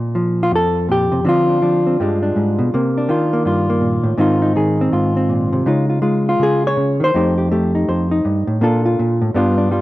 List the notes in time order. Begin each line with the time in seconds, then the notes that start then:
Already playing: A#2
0.15 F3
0.43 F4
0.51 F2
0.56 A4
0.89 A#2 G4
1.12 C3
1.25 D3 F3 C4 D4
1.29 F4
1.49 D4
1.62 F3 D4
1.87 C4
2.00 G2 G3 G#3 D4
2.23 D4
2.36 G#2
2.59 B2
2.74 C3 A#3
2.98 D4
3.09 D#3 F4
3.33 A#3
3.45 G2 F4
3.70 A#3
3.81 A#2
4.04 A2
4.18 G#2 D#3 C4 D#4 F4
4.42 D#4
4.56 D#3 G#4
4.81 C4
4.92 G#2 F4
5.17 C4
5.29 A#2
5.53 C3
5.66 C#3 G#3 D#4 F4
5.89 F4
6.02 G#3 F4
6.29 F4
6.39 C#3 G#4
6.67 C#5
6.77 C#3
7.00 D#3 C5
7.14 F2 A3 D#4 G4
7.38 G4
7.52 A3 G4
7.75 D#4
7.88 F2 C5
8.11 D#4
8.25 G2
8.47 A2
8.61 A#2 A#3 D4 F4 A4
8.85 F4
8.99 A#2
9.22 A2
9.34 G2 G3 B3 D4 F4
9.58 D4
9.71 G3 F4